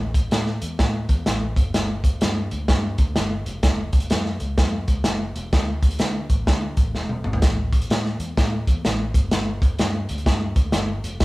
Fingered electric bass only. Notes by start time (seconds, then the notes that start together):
Already playing: A1
0.32 A2
0.62 E2
0.79 A2
1.09 E2
1.27 A1
1.56 G1
2.22 G2
2.52 D2
2.68 G2
2.98 D2
3.17 G1
3.46 F1
3.63 F#1
4.11 F#2
4.41 C#2
4.58 F#2
4.88 C#2
5.06 F#1
5.36 E1
5.53 D2
6.00 D3
6.30 A1
6.47 D3
6.77 A1
6.96 E1
7.25 G#1
7.42 A1
7.90 A2
8.19 E2
8.37 A2
8.67 E2
8.85 A1
9.14 G1
9.80 G2
10.10 D2
10.26 G2
10.56 D2
10.74 G1
11.04 F1
11.21 F#1